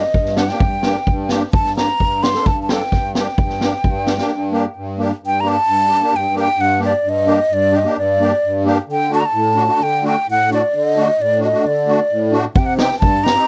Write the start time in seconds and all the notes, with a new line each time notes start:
Already playing: D#5
0.14 G2, kick
0.25 snare
0.36 D4 G4 F#5, snare
0.48 A#3 D4 G4 G5, snare
0.60 G2, kick
0.83 A#3 D4 G4, snare
1.07 G2, kick
1.29 A#3 D4 G4, snare
1.53 G2 A5, kick
1.65 snare
1.76 A#3 D4 G4 A#5, snare
2.00 G2, kick
2.23 D4 G4 C6, snare
2.34 A#3 D4 A4, snare
2.45 G2 A5, kick
2.63 A5
2.69 A#3 D4 A4 G5, snare
2.81 snare
2.92 G2, kick, snare
3.15 A#3 D4 G4 G5, snare
3.38 G2, kick
3.49 snare
3.60 A#3 D4 G4, snare
3.84 G2, kick
4.07 D4 G4, snare
4.18 A#3 D4 G4, snare
4.32 G2
4.52 A#3 D4 G4
4.76 G2
4.98 A#3 D4 G4
5.23 G2 G5
5.40 A#3 D4 G4 A#5
5.48 A5
5.67 G2
5.89 D4 G4
6.01 A#3 D4 G4
6.12 G2 G5
6.35 A#3 D4 G4
6.39 G5
6.57 G2
6.61 F#5
6.80 A#3 D4 G4
6.84 D5
7.04 G2
7.09 D#5
7.26 A#3 D4 G4
7.50 G2 D5
7.72 D4 G4
7.76 D#5
7.84 A#3 D4 G4
7.97 G2 D5
8.20 A#3 D4 G4
8.44 G2
8.65 A#3 D4 G4
8.89 D3 G5
9.11 A3 D4 F#4 A5
9.20 A#5
9.26 A5
9.33 A2
9.56 D4 F#4
9.68 A3 D4 F#4
9.80 D3 G5
10.03 A3 D4 F#4
10.07 G5
10.28 A2 F#5
10.50 A3 D4 F#4 D5
10.74 D3 D#5
10.97 A3 D4 F#4
11.20 A2 D5
11.40 D4 F#4
11.44 D#5
11.53 A3 D4 F#4
11.64 D3 D5
11.87 A3 D4 F#4
12.11 A2
12.31 A3 D4 F#4
12.55 C3 F#5, kick
12.59 G5
12.66 F#5
12.76 C4 D#4 G4 G5, snare
12.91 snare
12.99 G2 A5, kick
13.23 D#4 G4 A#5, snare
13.34 C4 D#4 G4